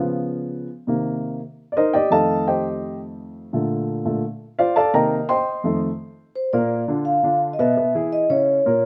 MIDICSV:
0, 0, Header, 1, 3, 480
1, 0, Start_track
1, 0, Key_signature, -2, "major"
1, 0, Tempo, 352734
1, 958, Time_signature, 4, 2, 24, 8
1, 12050, End_track
2, 0, Start_track
2, 0, Title_t, "Vibraphone"
2, 0, Program_c, 0, 11
2, 8648, Note_on_c, 0, 72, 79
2, 8869, Note_off_c, 0, 72, 0
2, 8884, Note_on_c, 0, 74, 68
2, 9330, Note_off_c, 0, 74, 0
2, 9594, Note_on_c, 0, 77, 80
2, 10044, Note_off_c, 0, 77, 0
2, 10253, Note_on_c, 0, 75, 65
2, 10334, Note_off_c, 0, 75, 0
2, 10334, Note_on_c, 0, 76, 84
2, 10774, Note_off_c, 0, 76, 0
2, 11056, Note_on_c, 0, 75, 84
2, 11160, Note_off_c, 0, 75, 0
2, 11294, Note_on_c, 0, 73, 87
2, 12050, Note_off_c, 0, 73, 0
2, 12050, End_track
3, 0, Start_track
3, 0, Title_t, "Upright piano"
3, 0, Program_c, 1, 0
3, 0, Note_on_c, 1, 49, 50
3, 0, Note_on_c, 1, 53, 47
3, 0, Note_on_c, 1, 59, 57
3, 0, Note_on_c, 1, 65, 54
3, 0, Note_on_c, 1, 77, 65
3, 180, Note_off_c, 1, 77, 0
3, 184, Note_off_c, 1, 65, 0
3, 899, Note_off_c, 1, 49, 0
3, 905, Note_off_c, 1, 53, 0
3, 909, Note_off_c, 1, 59, 0
3, 1186, Note_on_c, 1, 48, 53
3, 1193, Note_on_c, 1, 51, 51
3, 1200, Note_on_c, 1, 58, 57
3, 1877, Note_off_c, 1, 48, 0
3, 1881, Note_off_c, 1, 51, 0
3, 1885, Note_off_c, 1, 58, 0
3, 2342, Note_on_c, 1, 74, 56
3, 2377, Note_off_c, 1, 74, 0
3, 2404, Note_on_c, 1, 72, 64
3, 2406, Note_on_c, 1, 75, 82
3, 2408, Note_on_c, 1, 70, 67
3, 2414, Note_on_c, 1, 63, 67
3, 2622, Note_off_c, 1, 75, 0
3, 2632, Note_on_c, 1, 79, 83
3, 2636, Note_off_c, 1, 72, 0
3, 2638, Note_off_c, 1, 70, 0
3, 2641, Note_off_c, 1, 63, 0
3, 2642, Note_on_c, 1, 67, 69
3, 2642, Note_on_c, 1, 74, 72
3, 2642, Note_on_c, 1, 75, 75
3, 2862, Note_on_c, 1, 41, 49
3, 2865, Note_off_c, 1, 75, 0
3, 2870, Note_off_c, 1, 79, 0
3, 2875, Note_off_c, 1, 67, 0
3, 2875, Note_off_c, 1, 74, 0
3, 2875, Note_on_c, 1, 51, 47
3, 2881, Note_on_c, 1, 81, 88
3, 2884, Note_on_c, 1, 69, 64
3, 2884, Note_on_c, 1, 77, 63
3, 2885, Note_on_c, 1, 57, 57
3, 2885, Note_on_c, 1, 75, 69
3, 3329, Note_off_c, 1, 81, 0
3, 3330, Note_off_c, 1, 69, 0
3, 3330, Note_off_c, 1, 77, 0
3, 3331, Note_off_c, 1, 75, 0
3, 3369, Note_on_c, 1, 79, 72
3, 3370, Note_on_c, 1, 72, 59
3, 3371, Note_on_c, 1, 75, 58
3, 3376, Note_on_c, 1, 67, 59
3, 4036, Note_off_c, 1, 79, 0
3, 4037, Note_off_c, 1, 72, 0
3, 4037, Note_off_c, 1, 75, 0
3, 4041, Note_off_c, 1, 67, 0
3, 4740, Note_off_c, 1, 41, 0
3, 4747, Note_off_c, 1, 51, 0
3, 4752, Note_off_c, 1, 57, 0
3, 4800, Note_on_c, 1, 46, 53
3, 4806, Note_on_c, 1, 50, 49
3, 4817, Note_on_c, 1, 57, 56
3, 5487, Note_off_c, 1, 46, 0
3, 5498, Note_off_c, 1, 50, 0
3, 5500, Note_off_c, 1, 57, 0
3, 5507, Note_on_c, 1, 46, 48
3, 5519, Note_on_c, 1, 50, 42
3, 5520, Note_on_c, 1, 57, 56
3, 5731, Note_off_c, 1, 46, 0
3, 5737, Note_off_c, 1, 50, 0
3, 5738, Note_off_c, 1, 57, 0
3, 6240, Note_on_c, 1, 77, 79
3, 6248, Note_on_c, 1, 74, 64
3, 6250, Note_on_c, 1, 65, 64
3, 6250, Note_on_c, 1, 72, 64
3, 6465, Note_off_c, 1, 77, 0
3, 6468, Note_off_c, 1, 74, 0
3, 6475, Note_on_c, 1, 81, 88
3, 6480, Note_off_c, 1, 65, 0
3, 6480, Note_off_c, 1, 72, 0
3, 6483, Note_on_c, 1, 69, 73
3, 6485, Note_on_c, 1, 77, 77
3, 6488, Note_on_c, 1, 74, 78
3, 6713, Note_off_c, 1, 81, 0
3, 6716, Note_off_c, 1, 69, 0
3, 6716, Note_on_c, 1, 48, 55
3, 6717, Note_on_c, 1, 51, 46
3, 6718, Note_off_c, 1, 77, 0
3, 6719, Note_off_c, 1, 74, 0
3, 6721, Note_on_c, 1, 82, 83
3, 6723, Note_on_c, 1, 70, 67
3, 6725, Note_on_c, 1, 58, 59
3, 6729, Note_on_c, 1, 79, 67
3, 6734, Note_on_c, 1, 75, 65
3, 7039, Note_off_c, 1, 48, 0
3, 7040, Note_off_c, 1, 51, 0
3, 7044, Note_off_c, 1, 58, 0
3, 7169, Note_off_c, 1, 82, 0
3, 7170, Note_off_c, 1, 70, 0
3, 7173, Note_off_c, 1, 79, 0
3, 7176, Note_off_c, 1, 75, 0
3, 7197, Note_on_c, 1, 84, 90
3, 7207, Note_on_c, 1, 75, 64
3, 7207, Note_on_c, 1, 79, 72
3, 7211, Note_on_c, 1, 72, 67
3, 7652, Note_off_c, 1, 79, 0
3, 7670, Note_on_c, 1, 41, 56
3, 7678, Note_on_c, 1, 51, 49
3, 7685, Note_on_c, 1, 57, 60
3, 7869, Note_off_c, 1, 84, 0
3, 7875, Note_off_c, 1, 75, 0
3, 7877, Note_off_c, 1, 72, 0
3, 7996, Note_off_c, 1, 41, 0
3, 8000, Note_off_c, 1, 51, 0
3, 8003, Note_off_c, 1, 57, 0
3, 8886, Note_on_c, 1, 46, 79
3, 8890, Note_on_c, 1, 58, 80
3, 8896, Note_on_c, 1, 70, 78
3, 9278, Note_off_c, 1, 46, 0
3, 9280, Note_off_c, 1, 58, 0
3, 9284, Note_off_c, 1, 70, 0
3, 9363, Note_on_c, 1, 50, 69
3, 9370, Note_on_c, 1, 62, 61
3, 9379, Note_on_c, 1, 65, 66
3, 9756, Note_off_c, 1, 50, 0
3, 9760, Note_off_c, 1, 62, 0
3, 9765, Note_off_c, 1, 65, 0
3, 9840, Note_on_c, 1, 50, 65
3, 9850, Note_on_c, 1, 62, 66
3, 9855, Note_on_c, 1, 65, 66
3, 10233, Note_off_c, 1, 50, 0
3, 10239, Note_off_c, 1, 62, 0
3, 10243, Note_off_c, 1, 65, 0
3, 10327, Note_on_c, 1, 47, 83
3, 10330, Note_on_c, 1, 59, 77
3, 10339, Note_on_c, 1, 71, 76
3, 10521, Note_off_c, 1, 47, 0
3, 10523, Note_off_c, 1, 59, 0
3, 10528, Note_off_c, 1, 71, 0
3, 10571, Note_on_c, 1, 59, 67
3, 10575, Note_on_c, 1, 47, 66
3, 10577, Note_on_c, 1, 71, 68
3, 10763, Note_off_c, 1, 59, 0
3, 10766, Note_off_c, 1, 47, 0
3, 10767, Note_off_c, 1, 71, 0
3, 10811, Note_on_c, 1, 52, 72
3, 10812, Note_on_c, 1, 64, 73
3, 10824, Note_on_c, 1, 68, 76
3, 11200, Note_off_c, 1, 52, 0
3, 11200, Note_off_c, 1, 64, 0
3, 11207, Note_off_c, 1, 68, 0
3, 11289, Note_on_c, 1, 49, 69
3, 11292, Note_on_c, 1, 61, 67
3, 11299, Note_on_c, 1, 64, 67
3, 11678, Note_off_c, 1, 49, 0
3, 11680, Note_off_c, 1, 61, 0
3, 11684, Note_off_c, 1, 64, 0
3, 11780, Note_on_c, 1, 58, 70
3, 11784, Note_on_c, 1, 46, 73
3, 11785, Note_on_c, 1, 70, 75
3, 12050, Note_off_c, 1, 46, 0
3, 12050, Note_off_c, 1, 58, 0
3, 12050, Note_off_c, 1, 70, 0
3, 12050, End_track
0, 0, End_of_file